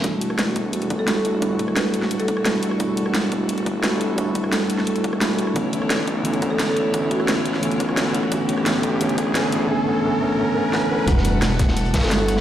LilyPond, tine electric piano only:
\new Staff \with { instrumentName = "Tine electric piano" } { \time 4/4 \key e \dorian \tempo 4 = 174 <g a d' e' fis'>2. <g a d' e' fis'>4 | <g a d' e' fis'>2. <g a d' e' fis'>4 | <g a d' e' fis'>2. <g a d' e' fis'>4 | <g a d' e' fis'>2. <g a d' e' fis'>4 |
<d e a b cis'>2 <d e a b cis'>2 | <d e a b cis'>2 <d e a b cis'>2 | <d e a b cis'>4 <d e a b cis'>4 <d e a b cis'>4 <d e a b cis'>4 | <d e a b cis'>8 <d e a b cis'>8 <d e a b cis'>8 <d e a b cis'>8 <d e a b cis'>8 <d e a b cis'>8 <d e a b cis'>8 <d e a b cis'>8 |
<g a d' e' fis'>2. <g a d' e' fis'>4 | }